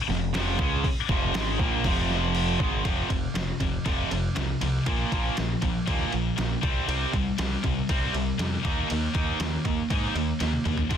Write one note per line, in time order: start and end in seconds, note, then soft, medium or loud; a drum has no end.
0.09 0.33 F1 medium
0.09 0.30 F2 medium
0.09 0.30 C3 medium
0.09 snare soft
0.34 0.58 F1 medium
0.34 0.59 F2 medium
0.34 0.60 C3 loud
0.34 0.60 F3 loud
0.34 snare loud
0.34 open hi-hat medium
0.59 0.83 C#2 loud
0.59 0.85 C#3 medium
0.59 0.85 G#3 medium
0.59 0.85 C#4 medium
0.59 kick loud
0.84 muted overdriven electric guitar stroke medium
0.84 muted picked electric bass stroke soft
0.84 muted distorted electric guitar stroke medium
0.84 kick medium
0.84 open hi-hat medium
1.09 1.33 F1 loud
1.09 1.34 F2 medium
1.09 1.34 C3 medium
1.09 1.34 F3 medium
1.09 kick loud
1.34 1.58 G#1 loud
1.34 1.59 G#2 loud
1.34 1.59 D#3 loud
1.34 1.59 G#3 medium
1.34 snare loud
1.34 open hi-hat medium
1.59 1.83 A#1 loud
1.59 1.84 A#2 medium
1.59 1.84 F3 loud
1.59 1.85 A#3 loud
1.59 kick loud
1.84 2.56 F1 medium
1.84 2.59 F2 loud
1.84 2.59 C3 loud
1.84 2.59 F3 loud
1.84 kick loud
1.84 open hi-hat medium
2.11 snare soft
2.35 open hi-hat medium
2.59 2.84 G#1 loud
2.59 2.84 G#2 medium
2.59 2.84 D#3 medium
2.59 2.84 G#3 medium
2.59 kick loud
2.84 3.02 F1 medium
2.84 3.08 F2 medium
2.84 3.08 C3 loud
2.84 3.09 F3 loud
2.84 kick medium
2.84 ride medium
3.10 3.27 F1 medium
3.10 3.33 F2 medium
3.10 3.33 C3 medium
3.10 kick medium
3.10 ride medium
3.35 3.51 F1 medium
3.35 3.58 F2 medium
3.35 3.58 C3 medium
3.35 snare loud
3.35 ride medium
3.60 3.77 F1 medium
3.60 3.83 F2 medium
3.60 3.83 C3 medium
3.60 kick medium
3.60 ride medium
3.85 4.02 F1 medium
3.85 4.09 F2 medium
3.85 4.10 C3 medium
3.85 4.10 F3 medium
3.85 kick loud
3.85 ride medium
4.11 4.28 F1 medium
4.11 4.34 F2 medium
4.11 4.34 C3 medium
4.11 ride medium
4.36 4.53 C2 medium
4.36 4.59 F2 medium
4.36 4.59 C3 medium
4.36 snare medium
4.36 ride medium
4.61 4.78 C2 medium
4.61 4.84 F2 medium
4.61 4.85 C3 medium
4.61 ride medium
4.86 5.03 A#1 medium
4.86 5.10 A#2 loud
4.86 5.10 F3 medium
4.86 5.11 A#3 loud
4.86 kick medium
4.86 ride medium
5.12 5.29 A#1 medium
5.12 5.35 A#2 medium
5.12 5.36 F3 medium
5.12 5.36 A#3 medium
5.12 kick medium
5.12 ride medium
5.36 5.55 A#1 medium
5.36 5.59 A#2 medium
5.36 5.60 F3 medium
5.36 snare loud
5.36 ride medium
5.61 5.79 A#1 medium
5.61 5.85 A#2 medium
5.61 5.85 F3 medium
5.61 kick medium
5.61 ride medium
5.86 6.04 D#2 medium
5.86 6.11 A#2 loud
5.86 6.11 F3 medium
5.86 6.11 A#3 loud
5.86 kick loud
5.86 ride loud
6.12 6.30 A#1 medium
6.12 6.35 A#2 medium
6.12 6.35 F3 medium
6.12 ride medium
6.36 6.55 A#1 medium
6.36 6.60 A#2 medium
6.36 6.60 F3 medium
6.36 snare loud
6.36 ride medium
6.61 6.80 C2 medium
6.61 6.85 C3 medium
6.61 6.85 G3 medium
6.61 6.86 C4 medium
6.61 kick loud
6.61 ride medium
6.87 7.05 C2 medium
6.87 7.11 C3 medium
6.87 7.11 G3 loud
6.87 7.11 C4 loud
6.87 ride medium
7.12 7.30 C2 medium
7.12 7.35 C3 medium
7.12 7.36 G3 medium
7.12 kick medium
7.12 ride medium
7.38 7.55 C2 medium
7.38 7.61 C3 medium
7.38 7.61 G3 medium
7.38 snare loud
7.38 ride medium
7.63 7.80 C2 medium
7.63 7.86 C3 medium
7.63 7.86 G3 medium
7.63 kick medium
7.63 ride medium
7.89 8.06 C2 medium
7.89 8.12 C3 loud
7.89 8.13 G3 loud
7.89 8.13 C4 loud
7.89 kick loud
7.89 ride medium
8.13 8.31 C2 medium
8.13 8.36 C3 medium
8.13 8.37 G3 medium
8.13 ride medium
8.38 8.56 F2 medium
8.38 8.62 C3 medium
8.38 8.62 G3 medium
8.38 snare medium
8.38 ride medium
8.63 8.81 D#2 medium
8.63 8.87 D#3 medium
8.63 8.87 A#3 medium
8.63 8.88 D#4 medium
8.63 kick loud
8.63 ride medium
8.88 9.07 D#2 medium
8.88 9.12 D#3 medium
8.88 9.12 A#3 medium
8.88 ride medium
9.14 9.31 D#2 medium
9.14 9.38 D#3 medium
9.14 9.38 A#3 medium
9.14 9.38 D#4 medium
9.14 kick medium
9.14 ride medium
9.40 9.57 D#2 medium
9.40 9.63 D#3 medium
9.40 9.63 A#3 medium
9.40 snare loud
9.40 ride medium
9.65 9.82 D#2 medium
9.65 9.88 D#3 medium
9.65 9.88 A#3 medium
9.65 kick medium
9.65 ride medium
9.90 10.07 G#2 medium
9.90 10.14 D#3 medium
9.90 10.14 A#3 loud
9.90 10.15 D#4 loud
9.90 kick loud
9.90 ride medium
10.15 10.32 D#2 medium
10.15 10.38 D#3 medium
10.15 10.38 A#3 medium
10.15 ride medium
10.40 10.57 D#2 medium
10.40 10.63 D#3 medium
10.40 10.63 A#3 medium
10.40 snare medium
10.40 ride medium
10.53 high tom medium
10.65 10.82 D#2 medium
10.65 10.88 D#3 medium
10.65 10.88 A#3 medium
10.65 mid tom medium
10.65 ride medium
10.77 floor tom medium
10.90 10.97 F1 medium
10.90 10.97 F2 medium
10.90 10.97 C3 medium
10.90 10.97 F3 loud
10.90 kick loud
10.90 ride medium